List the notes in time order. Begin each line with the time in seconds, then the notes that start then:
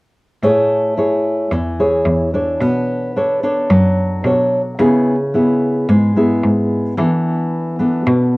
0.42 A2 A3 E4 G#4 C#5
0.97 E4 G#4 C#5
1.51 E2 E3
1.80 E4 G#4 C#5
2.05 E2
2.34 D4 A4 C#5
2.61 B2 B3
3.16 D4 A4 C#5
3.43 D4 A4 C#5
3.70 F#2 F#3
4.24 B2 D4 A4 C#5
4.79 C#3 B3 E4 G#4
5.34 B3 E4 G#4
5.89 G#2 G#3
6.16 B3 E4 G#4
6.44 G#2
6.97 E3 B3 D4 A4
7.79 B3 D4 A4
8.06 B2